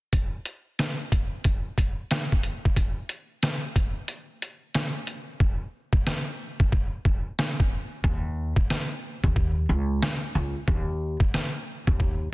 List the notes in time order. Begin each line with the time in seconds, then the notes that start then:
0.13 kick, closed hi-hat
0.46 closed hi-hat
0.79 cross-stick, snare, closed hi-hat
1.12 kick, closed hi-hat
1.44 kick, closed hi-hat
1.78 kick, closed hi-hat
2.11 cross-stick, snare, closed hi-hat
2.32 kick
2.43 closed hi-hat
2.65 kick
2.76 kick, closed hi-hat
3.09 closed hi-hat
3.43 cross-stick, snare, closed hi-hat
3.76 kick, closed hi-hat
4.08 closed hi-hat
4.42 closed hi-hat
4.75 cross-stick, snare, closed hi-hat
5.07 closed hi-hat
5.40 kick
5.93 kick
6.07 cross-stick, snare
6.60 kick
6.72 kick
7.05 kick
7.39 cross-stick, snare
7.60 kick
8.04 D#2, kick
8.56 kick
8.70 cross-stick, snare
9.24 D#2, kick
9.36 kick
9.69 C#2
10.03 cross-stick, snare
10.35 C#2
10.68 D#2, kick
11.20 kick
11.34 cross-stick, snare
11.87 D#2, kick
12.00 kick